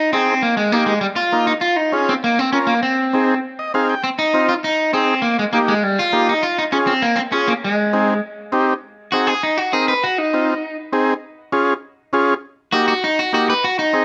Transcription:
Already playing: D#4
0.13 C4 D#4 G#4
0.42 A#3
0.57 G#3
0.72 A#3 D#4 G4
0.86 G#3
1.01 G3
1.16 F4
1.32 A#3 D#4 F4
1.47 D#4
1.61 F4
1.76 D#4
1.92 C#4 F4 G#4
2.09 C4
2.24 A#3
2.39 C4
2.52 C#4 F4 A#4
2.67 A#3
2.83 C4
3.13 C4 D#4 G#4
3.59 D#5
3.74 C4 D#4 G#4 F5
3.89 G5
4.04 C4
4.19 D#4
4.34 C4 D#4 F4
4.49 F4
4.64 D#4
4.93 C4 D#4 G#4
5.22 A#3
5.39 G#3
5.53 A#3 D#4 G4
5.68 G#3
5.83 G3
5.99 F4
6.13 A#3 D#4 G4
6.29 D#4
6.43 F4
6.58 D#4
6.72 C#4 F4 G#4
6.87 C4
7.02 A#3
7.16 C4
7.32 C#4 F4 G#4
7.48 A#3
7.64 G#3
7.93 C4 D#4 G#4
8.52 C4 D#4 G4
9.12 C4 D#4 F#4 G#4
9.27 G#4
9.43 D#4
9.58 F#4
9.73 C4 D#4 G#4 A#4
9.88 B4
10.04 F#4
10.18 D#4
10.34 C4 D#4 F4
10.93 C4 D#4 G#4
11.52 C#4 F4 G#4
12.13 C#4 F4 G#4
12.72 A#3 D#4 F#4 G4
12.88 F#4
13.04 D#4
13.19 F#4
13.33 A#3 D#4 F#4 G4
13.50 B4
13.64 F#4
13.79 D#4
13.93 C4 D#4 G#4

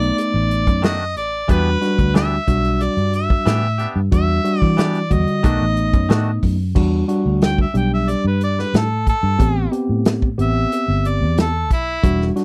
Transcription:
Already playing: B1 A3 B3 D#4 D5
0.02 closed hi-hat
0.18 D5, closed hi-hat
0.34 A1
0.51 closed hi-hat
0.67 F#2, kick, closed hi-hat
0.82 D#3 A3 D4 F#4 D#5, snare, closed hi-hat
1.16 A1 D5, closed hi-hat
1.48 E2 E3 G3 B3 D4 F#4 G4 B4, kick, closed hi-hat
1.81 G3 D4 F#4, snare, closed hi-hat
1.99 D2, kick, closed hi-hat
2.14 E3 B3 D4 G4 E5, snare, closed hi-hat
2.48 B1 G3 D4 F#4, kick, closed hi-hat
2.65 closed hi-hat
2.81 D5, closed hi-hat
2.97 G2, closed hi-hat
3.13 E5, closed hi-hat
3.30 kick
3.46 A2 E3 B3 D4 G4, snare, closed hi-hat
3.78 B3 D4 G4, closed hi-hat
3.96 G2
4.12 E2 G3 D4 F#4 E5, kick, closed hi-hat
4.44 G3 D4 F#4, closed hi-hat
4.60 E3 D5, kick
4.77 E3 B3 D4 G4 D5, snare, closed hi-hat
4.95 closed hi-hat
5.10 E2 D3 G3 F#4 D#5, kick, closed hi-hat
5.27 closed hi-hat
5.43 B1 D#3 A3 B3 D4 D#4 F#4, kick, closed hi-hat
5.61 A1
5.77 closed hi-hat
5.93 F#2, kick, closed hi-hat
6.09 A2 D#3 A3 D4 F#4, snare, closed hi-hat
6.43 F#2, kick, open hi-hat
6.75 E2 G3 D4 F#4, kick, crash
7.08 G3 D4 F#4, closed hi-hat
7.26 D2
7.42 G5, snare, closed hi-hat
7.58 E5, kick
7.74 B1 G3 D4 G4 G5, closed hi-hat
7.94 E5
8.08 D5, closed hi-hat
8.25 G2 B4
8.41 D5, closed hi-hat
8.59 B4, snare
8.74 A2 A4, snare, closed hi-hat
9.07 A4, kick, closed hi-hat
9.23 G2
9.39 A1 B3 C4 G4, kick, closed hi-hat
9.71 B3 C4 G4, closed hi-hat
9.89 A2
10.05 snare, closed hi-hat
10.22 kick
10.38 A1 B3 C4 G4 E5, closed hi-hat
10.72 closed hi-hat
10.88 G1
11.05 D5, closed hi-hat
11.21 E2
11.38 A4, snare, closed hi-hat
11.71 B1 E4, kick, closed hi-hat
12.03 E1 G3 D4 F#4, kick, closed hi-hat
12.21 snare
12.36 G3 D4 F#4, snare, closed hi-hat

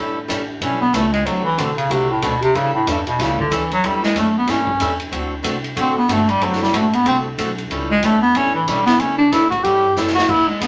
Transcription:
Already playing: A2 E3 G3 C#4 E4 A4
0.28 A1 E3 G3 C#4 E4 A4, kick, hi-hat pedal, ride
0.61 B1 E3 G3 C#4 E4 A4, kick, ride
0.81 B3
0.93 C#2 E3 G3 A3 C#4 E4 A4, kick, hi-hat pedal, ride
1.12 G#3, ride
1.25 D2 D3 F#3 A3 C4 F#4 A4, kick, ride
1.44 E3
1.57 B1 D3 A3 C4 F#4 A4, kick, hi-hat pedal, ride
1.77 C#3, ride
1.89 C2 C3 D3 A3 C4 F#4 A4, kick, ride
2.10 A2
2.22 D2 B2 D3 A3 C4 F#4 A4, kick, hi-hat pedal, ride
2.42 C3, ride
2.54 A2 C#3 E3 G3 C#4 E4 A4, kick, ride
2.73 A2
2.87 E2 G2 E3 G3 C#4 E4 A4, kick, hi-hat pedal, ride
3.07 B2, ride
3.19 C#2 C#3 E3 G3 C#4 E4 A4, kick, snare, ride
3.39 D3, kick
3.50 D2 E3 G3 C#4 E4 A4, kick, hi-hat pedal, ride
3.71 F#3, ride
3.83 E2 E3 G3 C#4 E4 A4, kick, ride
4.03 G#3, snare
4.15 F#2 E3 G3 C#4 E4 A4, kick, hi-hat pedal, ride
4.19 A3
4.38 B3
4.47 G2 E3 G3 C#4 E4 A4, kick, snare, ride
4.67 kick
4.80 E2 E3 G3 C#4 E4 A4, kick, hi-hat pedal, ride
5.00 ride
5.11 D2 D3 A3 C4 F#4 A4, kick, ride
5.43 C2 D3 A3 C4 F#4 A4, kick, hi-hat pedal, ride
5.64 ride
5.76 A1 D3 A3 C4 F#4 A4, kick, ride
5.98 B3
6.08 G1 D3 A3 C4 F#4 A4, kick, hi-hat pedal, ride
6.12 A3
6.29 G3, ride
6.41 F#1 D3 F#3 A3 C4 F#4 A4, kick, ride
6.52 snare
6.62 G3, snare
6.73 A1 D3 A3 C4 F#4 A4, kick, hi-hat pedal, ride
6.93 B3, ride
7.05 C2 D3 A3 C4 F#4 A4, kick, ride
7.38 B1 D3 A3 C4 F#4 A4, kick, hi-hat pedal, ride
7.58 ride
7.70 C#2 E3 G3 C#4 E4 A4, kick, ride
7.91 G#3
8.03 E2 E3 G3 A3 C#4 E4 A4, kick, hi-hat pedal, ride
8.22 B3
8.35 A2 E3 G3 C#4 E4 A4, kick, ride
8.55 E3
8.67 B2 E3 G3 C#4 E4 A4, kick, hi-hat pedal, ride
8.86 B3, snare, ride
9.00 C#3 E3 G3 C#4 E4 A4, kick, ride
9.18 D4
9.32 A2 E3 G3 C#4 E4 A4, kick, snare, hi-hat pedal, ride
9.50 F#4, kick, ride
9.63 G2 E3 G3 C#4 E4 G4 A4, kick, ride
9.96 F#2 E3 G3 C#4 E4 A4, snare, hi-hat pedal
10.07 snare
10.15 F#4, snare
10.29 E2 E3 B3 D4 E4 G#4, kick, crash
10.48 G#3, muted upright bass stroke
10.61 C#2 E3 B3 D4 G#4, kick, hi-hat pedal, ride

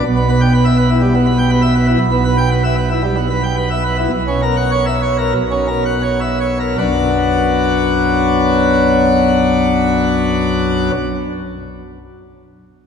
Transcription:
0.04 B1 B2
0.16 B3
0.29 B4
0.41 G5
0.54 B4
0.65 E5
0.77 B4
0.90 E4
1.01 G3
1.15 B3
1.26 B4
1.38 G5
1.50 B4
1.62 E5
1.75 B4
1.88 E4
2.00 B1 B2
2.12 B3
2.25 B4
2.38 G5
2.51 B4
2.64 E5
2.77 B4
2.91 E4
3.03 G3
3.16 B3
3.30 B4
3.44 G5
3.57 B4
3.71 E5
3.84 B4
3.98 E4
4.12 B1 B2
4.28 C#4
4.42 A#4
4.56 F#5
4.71 C#5
4.86 E5
5.02 C#5
5.18 A#4
5.35 B1 B2
5.51 C#4
5.68 A#4
5.85 F#5
6.02 C#5
6.21 E5
6.40 C#5
6.60 A#4
6.78 B1 F#2 F#3 B3 D4 F#4

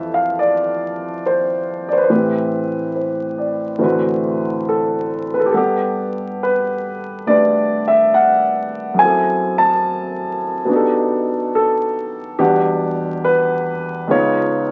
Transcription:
Already playing: F2 E3 F3 G4 A4 E5
0.14 F5
0.39 D5
1.26 C5
1.89 D5
1.93 C5
1.98 B4
2.04 C5
2.10 A2 E3 C4 G4 B4
2.96 C5
3.38 D5
3.78 D2 A2 E3 C4 F#4
3.83 B4
4.69 A4
5.34 B4
5.40 A4
5.46 G4
5.51 G2 G3 B3 A4 F#5
5.55 G4 A4
6.43 B4
7.26 A3 D4 G4 B4 D5
7.88 E5
8.14 F#5
8.94 F#2 F#3
8.99 C4 G#5
9.03 E4 A4
9.58 A5
10.65 B2 B3
10.70 D4 D#4
10.74 G4 A4
11.55 A4
12.39 E2 B2 G3 D4 G4 F#5
13.24 B4
14.07 C#2 C#3 B3 D#4 C#5
14.12 F4

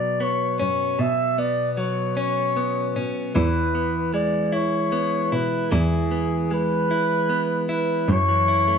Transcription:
Already playing: B2 F#3 B3 D5
0.20 B3 C#5
0.59 F#2 C#4 C#5
0.99 B2 E5
1.38 B3 D5
1.73 D5
1.77 F#3 C#5
2.17 C#4 C#5
2.57 B3
2.96 B2 C#4
3.35 E2 E3 E4 B4
3.75 B3
4.14 G#3 D5
4.52 E4 C#5
4.92 B3
5.32 B2 E4 B4
5.71 E2 E3 E4 G#4
6.11 B3
6.51 G#3 B4
6.91 E4
7.30 B3
7.69 E4 B4
8.08 F#2 C#5
8.29 E3
8.48 E4
8.68 A3

